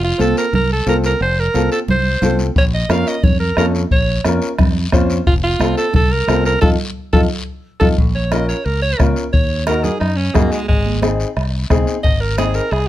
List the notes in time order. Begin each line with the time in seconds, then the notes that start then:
Already playing: F1
0.04 F4
0.18 C2 C4 F4 A4, high conga, short guiro
0.37 A#4, short guiro
0.53 C2 A#4, high conga, low conga, long guiro
0.72 A4
0.86 C2 C4 F4 A4 A#4, high conga, short guiro
1.04 A#4, short guiro
1.20 F1 C5, high conga, long guiro
1.39 A#4
1.54 C2 C4 F4 A4, high conga, short guiro
1.72 A4, short guiro
1.88 C2 C5, high conga, low conga, long guiro
2.21 C2 C4 F4 A4, high conga, low conga, short guiro
2.39 short guiro
2.56 A#1 C#5, bombo low, high conga, long guiro
2.74 D#5
2.89 F2 C#4 F4 A#4 F5, bombo rim, high conga, short guiro
3.07 D#5, short guiro
3.23 F2 C#5, bombo low, high conga, low conga, long guiro
3.40 A#4
3.56 F2 C#4 F4 A4 A#4, bombo rim, high conga, short guiro
3.75 short guiro
3.91 A#1 C#5, bombo low, high conga, long guiro
4.25 F2 C#4 F4 A#4, bombo rim, high conga, short guiro
4.42 short guiro
4.59 F2, bombo low, bombo rim, high conga, low conga, long guiro
4.92 F2 C#4 F4 C5, bombo low, bombo rim, high conga, short guiro
5.10 short guiro
5.26 F1 F4, bombo low, high conga, long guiro
5.44 F4
5.59 C2 C4 F4 A4, bombo rim, high conga, short guiro
5.77 A4, short guiro
5.94 C2 A4, bombo low, high conga, low conga, long guiro
6.12 A#4
6.27 C2 C4 F4 A4, bombo rim, high conga, short guiro
6.45 A#4, short guiro
6.61 F2 D#4 F4 A4, bombo low, low conga, long guiro
7.13 F2 D#4 F4 A4, bombo low, low conga, long guiro
7.80 F2 D#4 F4 A4, bombo low, low conga, long guiro
7.98 A#1, bombo low, high conga, long guiro
8.15 C#5
8.31 C#4 F4 A#4 D#5, bombo rim, high conga, short guiro
8.48 C#5, short guiro
8.65 C#2 A#4, high conga, long guiro
8.82 C#5
8.98 C#2 C#4 F4 A#4, bombo low, bombo rim, high conga, short guiro
9.16 short guiro
9.33 D#2 C#5, bombo low, high conga, long guiro
9.67 D#4 F#4 A#4, bombo rim, high conga, short guiro
9.84 G#4, low conga, short guiro
10.00 F#2 D#4, bombo rim, high conga, long guiro
10.16 C#4
10.34 F#2 A#3 D#4 F#4 G#4, bombo low, bombo rim, high conga, low conga, short guiro
10.52 G#3, short guiro
10.68 G#1 G#3, bombo low, high conga, long guiro
10.86 high conga
11.02 C4 D#4 G#4, bombo rim, high conga, short guiro
11.20 short guiro
11.36 C2, bombo rim, high conga, long guiro
11.70 C2 C4 D#4 G#4, bombo low, bombo rim, high conga, short guiro
11.87 short guiro
12.03 G#1 D#5, bombo low, high conga, long guiro
12.21 A#4
12.37 C4 D#4 G#4, bombo rim, high conga, short guiro
12.54 A#4, short guiro
12.71 C2 G#4, bombo rim, high conga, long guiro